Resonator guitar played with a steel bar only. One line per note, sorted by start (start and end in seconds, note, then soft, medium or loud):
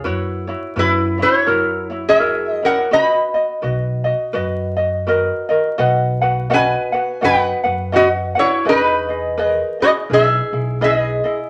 0.79 1.18 E4 medium
0.79 1.22 B4 medium
1.22 2.03 E4 medium
1.22 2.10 C#5 medium
2.09 2.60 G#4 medium
2.09 2.51 E5 medium
2.51 2.66 D#5 medium
2.65 2.91 A#4 medium
2.65 2.94 F#5 medium
2.93 5.04 D#5 medium
2.93 5.04 B5 medium
6.53 7.20 B4 medium
6.53 7.27 G#5 loud
7.24 7.92 B4 medium
7.24 7.98 F#5 medium
7.96 8.07 F#4 medium
7.96 8.08 D#5 medium
8.39 8.66 E4 medium
8.39 8.68 C#5 medium
8.69 9.79 D#4 medium
8.69 9.47 B4 medium
9.47 9.86 A#4 medium
9.82 9.91 F#4 medium
9.82 9.90 D#5 medium
10.13 10.80 G#4 medium
10.13 10.86 E5 medium
10.84 11.37 G#4 medium
10.84 11.37 D#5 medium